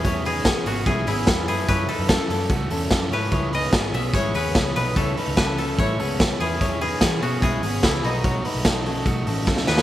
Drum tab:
HH |x-o-x-o-x-o-x-o-|x-o-x-o-x-o-x-o-|x-o-x-o-x-o-x-o-|x-o-x-o-x-o-x-o-|
SD |----o-------o---|----o-------o---|----o-------o---|----o-------o---|
BD |o---o---o---o---|o---o---o---o---|o---o---o---o---|o---o---o---o---|

HH |x-o-x-o-x-o-x-o-|x-o-x-o-x-o-----|
SD |----o-------o---|----o-------oooo|
BD |o---o---o---o---|o---o---o---o---|